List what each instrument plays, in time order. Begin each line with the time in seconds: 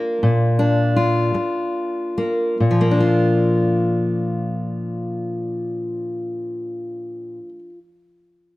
Already playing: steel-string acoustic guitar A#3 D4 F4
0.23 steel-string acoustic guitar A#2
0.59 steel-string acoustic guitar D4
0.96 steel-string acoustic guitar F4
1.34 muted steel-string acoustic guitar stroke
2.18 steel-string acoustic guitar A#3
2.60 steel-string acoustic guitar A#2
2.71 steel-string acoustic guitar F3
2.81 steel-string acoustic guitar A#3
2.91 steel-string acoustic guitar D4
3.00 steel-string acoustic guitar F4